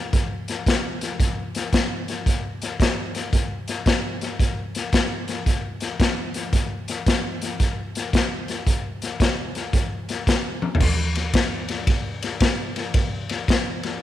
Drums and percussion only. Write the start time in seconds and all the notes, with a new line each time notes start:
0.13 kick, snare, closed hi-hat
0.48 snare, closed hi-hat
0.66 kick, snare, closed hi-hat
1.01 snare, closed hi-hat
1.20 kick, snare, closed hi-hat
1.55 snare, closed hi-hat
1.73 kick, snare, closed hi-hat
2.08 snare, closed hi-hat
2.26 kick, snare, closed hi-hat
2.62 snare, closed hi-hat
2.80 kick, snare, closed hi-hat
3.15 snare, closed hi-hat
3.33 kick, snare, closed hi-hat
3.68 snare, closed hi-hat
3.86 kick, snare, closed hi-hat
4.21 snare, closed hi-hat
4.40 kick, snare, closed hi-hat
4.75 snare, closed hi-hat
4.93 kick, snare, closed hi-hat
5.28 snare, closed hi-hat
5.46 kick, snare, closed hi-hat
5.80 snare, closed hi-hat
6.00 kick, snare, closed hi-hat
6.34 snare, closed hi-hat
6.53 kick, snare, closed hi-hat
6.88 snare, closed hi-hat
7.06 kick, snare, closed hi-hat
7.41 snare, closed hi-hat
7.60 kick, snare, closed hi-hat
7.95 snare, closed hi-hat
8.13 kick, snare, closed hi-hat
8.48 snare, closed hi-hat
8.67 kick, snare, closed hi-hat
9.02 snare, closed hi-hat
9.20 kick, snare, closed hi-hat
9.55 snare, closed hi-hat
9.73 kick, snare, closed hi-hat
10.09 snare, closed hi-hat
10.27 kick, snare, closed hi-hat
10.62 high tom
10.75 floor tom
10.80 kick, snare, crash
11.15 snare, ride
11.34 kick, snare, ride
11.68 snare, ride
11.87 kick, snare, ride
12.22 snare, ride
12.40 kick, snare, ride
12.76 snare, ride
12.94 kick, snare, ride
13.29 snare, ride
13.48 kick, snare, ride
13.83 snare, ride